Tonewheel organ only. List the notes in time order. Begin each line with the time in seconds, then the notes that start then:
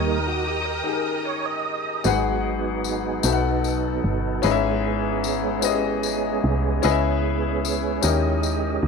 Already playing: G3 A#3 D#4
0.07 A#4
0.28 F#4
0.47 G4
0.62 A#4 C#5
0.84 A#4
1.25 C#5
1.46 D#5
2.04 F#3 B3 D#4 G#4
3.25 D#4 A4
4.43 G#3 C#4 G#4
8.05 G4 D#5